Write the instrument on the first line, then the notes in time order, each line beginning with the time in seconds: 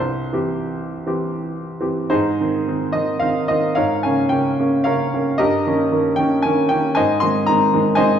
grand piano
Already playing: C2 C5
0.33 E3 C4 G4
1.06 E3 C4 G4
1.80 E3 C4 G4
2.10 G#2 D#4 G#4 C5
2.41 D#3 C4
2.68 D#3 C4
2.92 D#3 C4 D#5
3.19 D#3 C4 F5
3.48 D#3 C4 D#5
3.75 G#2 A#4 C#5 F5
4.03 C#3 A#3 C#4 G#5
4.29 C#3 A#3 C#4 G5
4.60 C#3 A#3 C#4
4.84 C#3 A#3 C#4 A#4 C#5 F5
5.14 C#3 A#3 C#4
5.38 G2 G4 A#4 D#5
5.67 D#3 A#3 C#4
5.92 D#3 A#3 C#4
6.16 D#3 A#3 C#4 G5
6.42 D#3 A#3 C#4 G#5
6.69 D#3 A#3 C#4 G5
6.95 G#2 C5 D#5 G#5
7.20 D#3 G#3 C4 C6
7.46 D#3 G#3 C4 A#5
7.74 D#3 G#3 C4
7.95 D#3 G#3 C4 C5 D#5 G#5